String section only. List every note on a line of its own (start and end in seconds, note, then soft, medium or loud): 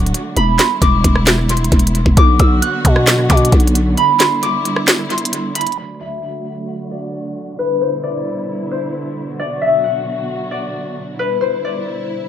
0.00 2.13 D3 medium
0.00 0.35 F#3 medium
0.00 0.35 A3 medium
0.00 0.35 F#4 medium
0.36 2.15 G3 medium
0.36 5.74 B3 medium
0.36 2.15 E4 medium
2.17 5.74 D3 medium
2.17 3.96 F#3 medium
2.17 3.96 F#4 medium
3.97 5.76 G3 medium
3.97 5.76 E4 medium
5.78 12.29 D3 medium
5.78 7.57 F#3 medium
5.78 7.57 A3 medium
5.78 7.57 F#4 medium
7.58 12.29 B2 medium
7.58 9.37 G3 medium
7.58 9.37 E4 medium
9.39 11.18 F#3 medium
9.39 11.17 F#4 medium
11.19 12.29 G3 medium
11.19 12.29 E4 medium